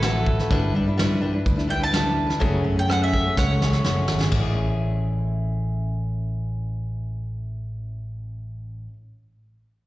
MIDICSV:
0, 0, Header, 1, 5, 480
1, 0, Start_track
1, 0, Key_signature, 3, "major"
1, 0, Tempo, 478088
1, 503, Time_signature, 4, 2, 24, 8
1, 9906, End_track
2, 0, Start_track
2, 0, Title_t, "Mandolin"
2, 0, Program_c, 0, 25
2, 0, Note_on_c, 0, 64, 67
2, 0, Note_on_c, 0, 69, 77
2, 709, Note_off_c, 0, 64, 0
2, 720, Note_off_c, 0, 69, 0
2, 1710, Note_on_c, 0, 79, 79
2, 1817, Note_off_c, 0, 79, 0
2, 1843, Note_on_c, 0, 81, 91
2, 2763, Note_off_c, 0, 81, 0
2, 2802, Note_on_c, 0, 79, 78
2, 2903, Note_off_c, 0, 79, 0
2, 2935, Note_on_c, 0, 78, 77
2, 3030, Note_off_c, 0, 78, 0
2, 3047, Note_on_c, 0, 76, 76
2, 3383, Note_off_c, 0, 76, 0
2, 3392, Note_on_c, 0, 73, 78
2, 3398, Note_on_c, 0, 78, 74
2, 4306, Note_off_c, 0, 73, 0
2, 4319, Note_off_c, 0, 78, 0
2, 9906, End_track
3, 0, Start_track
3, 0, Title_t, "Steel-string acoustic guitar"
3, 0, Program_c, 1, 25
3, 33, Note_on_c, 1, 50, 67
3, 41, Note_on_c, 1, 54, 68
3, 41, Note_on_c, 1, 57, 66
3, 41, Note_on_c, 1, 66, 68
3, 48, Note_on_c, 1, 71, 77
3, 384, Note_off_c, 1, 71, 0
3, 387, Note_off_c, 1, 50, 0
3, 391, Note_off_c, 1, 57, 0
3, 392, Note_off_c, 1, 54, 0
3, 392, Note_off_c, 1, 66, 0
3, 396, Note_on_c, 1, 71, 48
3, 405, Note_on_c, 1, 66, 49
3, 415, Note_on_c, 1, 57, 43
3, 509, Note_off_c, 1, 71, 0
3, 513, Note_off_c, 1, 57, 0
3, 514, Note_off_c, 1, 66, 0
3, 515, Note_on_c, 1, 55, 80
3, 517, Note_on_c, 1, 62, 79
3, 521, Note_on_c, 1, 64, 93
3, 524, Note_on_c, 1, 71, 94
3, 738, Note_off_c, 1, 55, 0
3, 747, Note_off_c, 1, 62, 0
3, 750, Note_on_c, 1, 55, 59
3, 751, Note_off_c, 1, 64, 0
3, 753, Note_off_c, 1, 71, 0
3, 759, Note_on_c, 1, 62, 62
3, 765, Note_on_c, 1, 64, 65
3, 768, Note_on_c, 1, 71, 69
3, 859, Note_off_c, 1, 71, 0
3, 866, Note_off_c, 1, 55, 0
3, 868, Note_off_c, 1, 64, 0
3, 870, Note_off_c, 1, 62, 0
3, 871, Note_on_c, 1, 71, 50
3, 880, Note_on_c, 1, 64, 49
3, 891, Note_on_c, 1, 62, 39
3, 968, Note_off_c, 1, 62, 0
3, 971, Note_off_c, 1, 64, 0
3, 977, Note_on_c, 1, 55, 74
3, 980, Note_on_c, 1, 62, 74
3, 981, Note_off_c, 1, 71, 0
3, 983, Note_on_c, 1, 64, 76
3, 993, Note_on_c, 1, 71, 87
3, 1207, Note_off_c, 1, 55, 0
3, 1208, Note_off_c, 1, 62, 0
3, 1217, Note_off_c, 1, 64, 0
3, 1219, Note_on_c, 1, 55, 55
3, 1220, Note_on_c, 1, 62, 64
3, 1224, Note_off_c, 1, 71, 0
3, 1229, Note_on_c, 1, 64, 58
3, 1236, Note_on_c, 1, 71, 57
3, 1321, Note_off_c, 1, 71, 0
3, 1330, Note_off_c, 1, 64, 0
3, 1333, Note_on_c, 1, 71, 45
3, 1336, Note_off_c, 1, 62, 0
3, 1340, Note_off_c, 1, 55, 0
3, 1342, Note_on_c, 1, 64, 41
3, 1348, Note_on_c, 1, 62, 41
3, 1551, Note_off_c, 1, 71, 0
3, 1563, Note_on_c, 1, 71, 46
3, 1564, Note_off_c, 1, 64, 0
3, 1566, Note_off_c, 1, 62, 0
3, 1576, Note_on_c, 1, 64, 43
3, 1578, Note_on_c, 1, 62, 40
3, 1680, Note_off_c, 1, 62, 0
3, 1682, Note_on_c, 1, 55, 62
3, 1685, Note_off_c, 1, 64, 0
3, 1692, Note_off_c, 1, 71, 0
3, 1693, Note_on_c, 1, 62, 59
3, 1697, Note_on_c, 1, 64, 60
3, 1707, Note_on_c, 1, 71, 65
3, 1793, Note_off_c, 1, 71, 0
3, 1804, Note_off_c, 1, 64, 0
3, 1805, Note_on_c, 1, 71, 46
3, 1811, Note_off_c, 1, 55, 0
3, 1814, Note_off_c, 1, 62, 0
3, 1816, Note_on_c, 1, 64, 42
3, 1826, Note_on_c, 1, 62, 37
3, 1919, Note_off_c, 1, 62, 0
3, 1921, Note_off_c, 1, 64, 0
3, 1921, Note_on_c, 1, 55, 67
3, 1929, Note_off_c, 1, 71, 0
3, 1931, Note_on_c, 1, 62, 70
3, 1933, Note_on_c, 1, 64, 63
3, 1941, Note_on_c, 1, 71, 66
3, 2262, Note_off_c, 1, 71, 0
3, 2274, Note_on_c, 1, 71, 47
3, 2275, Note_off_c, 1, 64, 0
3, 2287, Note_on_c, 1, 64, 38
3, 2290, Note_off_c, 1, 55, 0
3, 2290, Note_off_c, 1, 62, 0
3, 2302, Note_on_c, 1, 62, 36
3, 2403, Note_on_c, 1, 42, 69
3, 2405, Note_off_c, 1, 62, 0
3, 2407, Note_off_c, 1, 71, 0
3, 2408, Note_on_c, 1, 49, 90
3, 2409, Note_on_c, 1, 57, 74
3, 2411, Note_on_c, 1, 54, 83
3, 2414, Note_off_c, 1, 64, 0
3, 2418, Note_on_c, 1, 61, 94
3, 2420, Note_on_c, 1, 68, 82
3, 2637, Note_off_c, 1, 54, 0
3, 2640, Note_off_c, 1, 57, 0
3, 2644, Note_off_c, 1, 61, 0
3, 2649, Note_on_c, 1, 54, 47
3, 2651, Note_off_c, 1, 42, 0
3, 2652, Note_on_c, 1, 57, 53
3, 2654, Note_off_c, 1, 49, 0
3, 2654, Note_off_c, 1, 68, 0
3, 2656, Note_on_c, 1, 61, 55
3, 2666, Note_on_c, 1, 68, 57
3, 2756, Note_off_c, 1, 68, 0
3, 2763, Note_off_c, 1, 61, 0
3, 2768, Note_on_c, 1, 68, 41
3, 2774, Note_off_c, 1, 57, 0
3, 2775, Note_off_c, 1, 54, 0
3, 2775, Note_on_c, 1, 61, 36
3, 2786, Note_on_c, 1, 57, 38
3, 2796, Note_on_c, 1, 54, 35
3, 2884, Note_off_c, 1, 54, 0
3, 2888, Note_off_c, 1, 57, 0
3, 2892, Note_on_c, 1, 42, 64
3, 2894, Note_off_c, 1, 61, 0
3, 2894, Note_off_c, 1, 68, 0
3, 2894, Note_on_c, 1, 49, 60
3, 2896, Note_on_c, 1, 54, 67
3, 2900, Note_on_c, 1, 57, 67
3, 2905, Note_on_c, 1, 68, 72
3, 2906, Note_on_c, 1, 61, 66
3, 3125, Note_off_c, 1, 54, 0
3, 3131, Note_off_c, 1, 57, 0
3, 3136, Note_off_c, 1, 42, 0
3, 3137, Note_off_c, 1, 49, 0
3, 3137, Note_on_c, 1, 54, 49
3, 3140, Note_off_c, 1, 61, 0
3, 3143, Note_off_c, 1, 68, 0
3, 3143, Note_on_c, 1, 57, 49
3, 3152, Note_on_c, 1, 61, 51
3, 3154, Note_on_c, 1, 68, 50
3, 3256, Note_off_c, 1, 68, 0
3, 3259, Note_off_c, 1, 54, 0
3, 3260, Note_off_c, 1, 61, 0
3, 3261, Note_off_c, 1, 57, 0
3, 3268, Note_on_c, 1, 68, 37
3, 3273, Note_on_c, 1, 61, 40
3, 3284, Note_on_c, 1, 57, 40
3, 3291, Note_on_c, 1, 54, 34
3, 3498, Note_off_c, 1, 68, 0
3, 3506, Note_off_c, 1, 61, 0
3, 3510, Note_on_c, 1, 68, 43
3, 3512, Note_off_c, 1, 57, 0
3, 3515, Note_off_c, 1, 54, 0
3, 3518, Note_on_c, 1, 61, 44
3, 3525, Note_on_c, 1, 57, 37
3, 3529, Note_on_c, 1, 54, 35
3, 3613, Note_off_c, 1, 54, 0
3, 3621, Note_off_c, 1, 57, 0
3, 3625, Note_off_c, 1, 68, 0
3, 3625, Note_on_c, 1, 54, 51
3, 3629, Note_off_c, 1, 61, 0
3, 3633, Note_on_c, 1, 57, 54
3, 3643, Note_on_c, 1, 61, 47
3, 3648, Note_on_c, 1, 68, 51
3, 3732, Note_off_c, 1, 61, 0
3, 3733, Note_off_c, 1, 68, 0
3, 3742, Note_off_c, 1, 54, 0
3, 3742, Note_off_c, 1, 57, 0
3, 3744, Note_on_c, 1, 61, 43
3, 3745, Note_on_c, 1, 68, 46
3, 3754, Note_on_c, 1, 57, 42
3, 3759, Note_on_c, 1, 54, 33
3, 3855, Note_off_c, 1, 57, 0
3, 3857, Note_off_c, 1, 61, 0
3, 3858, Note_off_c, 1, 54, 0
3, 3862, Note_off_c, 1, 68, 0
3, 3863, Note_on_c, 1, 42, 58
3, 3867, Note_on_c, 1, 57, 57
3, 3868, Note_on_c, 1, 49, 57
3, 3869, Note_on_c, 1, 61, 66
3, 3870, Note_on_c, 1, 54, 64
3, 3873, Note_on_c, 1, 68, 59
3, 4205, Note_off_c, 1, 68, 0
3, 4214, Note_off_c, 1, 61, 0
3, 4217, Note_on_c, 1, 68, 47
3, 4221, Note_off_c, 1, 42, 0
3, 4221, Note_off_c, 1, 57, 0
3, 4224, Note_off_c, 1, 49, 0
3, 4225, Note_off_c, 1, 54, 0
3, 4226, Note_on_c, 1, 61, 48
3, 4233, Note_on_c, 1, 57, 43
3, 4237, Note_on_c, 1, 54, 36
3, 4289, Note_off_c, 1, 57, 0
3, 4297, Note_off_c, 1, 54, 0
3, 4301, Note_on_c, 1, 57, 67
3, 4338, Note_off_c, 1, 68, 0
3, 4343, Note_off_c, 1, 61, 0
3, 4354, Note_on_c, 1, 61, 61
3, 4387, Note_on_c, 1, 64, 76
3, 4428, Note_on_c, 1, 68, 81
3, 8913, Note_off_c, 1, 57, 0
3, 8966, Note_off_c, 1, 61, 0
3, 8999, Note_off_c, 1, 64, 0
3, 9040, Note_off_c, 1, 68, 0
3, 9906, End_track
4, 0, Start_track
4, 0, Title_t, "Picked electric bass"
4, 0, Program_c, 2, 34
4, 0, Note_on_c, 2, 33, 80
4, 399, Note_off_c, 2, 33, 0
4, 509, Note_on_c, 2, 31, 67
4, 719, Note_off_c, 2, 31, 0
4, 741, Note_on_c, 2, 43, 86
4, 1381, Note_off_c, 2, 43, 0
4, 1464, Note_on_c, 2, 38, 79
4, 2316, Note_off_c, 2, 38, 0
4, 2423, Note_on_c, 2, 30, 69
4, 2635, Note_off_c, 2, 30, 0
4, 2658, Note_on_c, 2, 42, 79
4, 3299, Note_off_c, 2, 42, 0
4, 3384, Note_on_c, 2, 37, 73
4, 3809, Note_off_c, 2, 37, 0
4, 3863, Note_on_c, 2, 30, 65
4, 4078, Note_off_c, 2, 30, 0
4, 4101, Note_on_c, 2, 32, 72
4, 4316, Note_off_c, 2, 32, 0
4, 4335, Note_on_c, 2, 33, 65
4, 8907, Note_off_c, 2, 33, 0
4, 9906, End_track
5, 0, Start_track
5, 0, Title_t, "Drums"
5, 24, Note_on_c, 9, 42, 47
5, 26, Note_on_c, 9, 38, 91
5, 125, Note_off_c, 9, 42, 0
5, 126, Note_off_c, 9, 38, 0
5, 266, Note_on_c, 9, 36, 69
5, 366, Note_off_c, 9, 36, 0
5, 395, Note_on_c, 9, 38, 29
5, 495, Note_off_c, 9, 38, 0
5, 507, Note_on_c, 9, 42, 55
5, 509, Note_on_c, 9, 36, 97
5, 608, Note_off_c, 9, 42, 0
5, 609, Note_off_c, 9, 36, 0
5, 995, Note_on_c, 9, 42, 54
5, 996, Note_on_c, 9, 38, 90
5, 1095, Note_off_c, 9, 42, 0
5, 1096, Note_off_c, 9, 38, 0
5, 1463, Note_on_c, 9, 42, 54
5, 1466, Note_on_c, 9, 36, 91
5, 1563, Note_off_c, 9, 42, 0
5, 1567, Note_off_c, 9, 36, 0
5, 1594, Note_on_c, 9, 38, 24
5, 1694, Note_off_c, 9, 38, 0
5, 1943, Note_on_c, 9, 42, 54
5, 1944, Note_on_c, 9, 38, 84
5, 2044, Note_off_c, 9, 42, 0
5, 2045, Note_off_c, 9, 38, 0
5, 2310, Note_on_c, 9, 38, 29
5, 2410, Note_off_c, 9, 38, 0
5, 2419, Note_on_c, 9, 42, 48
5, 2426, Note_on_c, 9, 36, 83
5, 2520, Note_off_c, 9, 42, 0
5, 2526, Note_off_c, 9, 36, 0
5, 2908, Note_on_c, 9, 42, 50
5, 2909, Note_on_c, 9, 37, 92
5, 3008, Note_off_c, 9, 42, 0
5, 3009, Note_off_c, 9, 37, 0
5, 3148, Note_on_c, 9, 36, 60
5, 3248, Note_off_c, 9, 36, 0
5, 3388, Note_on_c, 9, 36, 81
5, 3390, Note_on_c, 9, 38, 45
5, 3488, Note_off_c, 9, 36, 0
5, 3491, Note_off_c, 9, 38, 0
5, 3634, Note_on_c, 9, 38, 53
5, 3735, Note_off_c, 9, 38, 0
5, 3744, Note_on_c, 9, 38, 46
5, 3844, Note_off_c, 9, 38, 0
5, 3861, Note_on_c, 9, 38, 60
5, 3961, Note_off_c, 9, 38, 0
5, 4094, Note_on_c, 9, 38, 72
5, 4195, Note_off_c, 9, 38, 0
5, 4222, Note_on_c, 9, 38, 60
5, 4322, Note_off_c, 9, 38, 0
5, 4332, Note_on_c, 9, 52, 66
5, 4339, Note_on_c, 9, 36, 82
5, 4433, Note_off_c, 9, 52, 0
5, 4439, Note_off_c, 9, 36, 0
5, 9906, End_track
0, 0, End_of_file